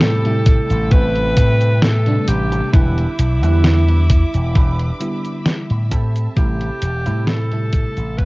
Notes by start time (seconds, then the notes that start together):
Already playing: A2 C3 G3 A3 C4 E4 G4 A4 E5 G5 A5
0.00 A4, snare, closed hi-hat, cabasa
0.23 C3 G3 A3 E4, closed hi-hat
0.46 kick, closed hi-hat, cabasa
0.70 A1, closed hi-hat, cabasa
0.91 C4 E4 G4 A4 B4, kick, closed hi-hat, cabasa
1.16 closed hi-hat
1.37 A2, kick, closed hi-hat, cabasa
1.61 closed hi-hat, cabasa
1.82 A4, snare, closed hi-hat, cabasa
2.06 C3 G3 A3 D4, closed hi-hat
2.28 A1 G4, closed hi-hat, cabasa
2.52 muted clean electric guitar stroke, closed hi-hat, cabasa
2.72 E1 D3 G3 B3 D4 E4 G4 B4 B5 D6, kick, closed hi-hat, cabasa
2.98 closed hi-hat
3.19 B1, closed hi-hat, cabasa
3.42 E2 D3 G3 B3 D4 E4 G4 B4, closed hi-hat, cabasa
3.64 snare, closed hi-hat, cabasa
3.87 D3 G3 B3 E4, closed hi-hat
4.10 kick, closed hi-hat, cabasa
4.34 E1, closed hi-hat, cabasa
4.55 D4 E4 G4 B4, kick, closed hi-hat, cabasa
4.79 closed hi-hat
5.00 D3 G3 B3 E4, closed hi-hat, cabasa
5.24 closed hi-hat, cabasa
5.46 snare, closed hi-hat, cabasa
5.70 A2, closed hi-hat
5.91 C4 E4 G4 A4 A5, kick, closed hi-hat, cabasa
6.16 closed hi-hat, cabasa
6.36 A1 C3 G3 A3 E4 G4, kick, closed hi-hat, cabasa
6.61 closed hi-hat
6.82 E1, closed hi-hat, cabasa
7.05 A2 C3 G3 A3 C4 E4 G4 A4, closed hi-hat, cabasa
7.27 A4, snare, closed hi-hat, cabasa
7.50 C3 G3 A3 E4, closed hi-hat
7.73 kick, closed hi-hat, cabasa
7.97 A1, closed hi-hat, cabasa
8.18 C4 E4 G4 B4, kick, closed hi-hat, cabasa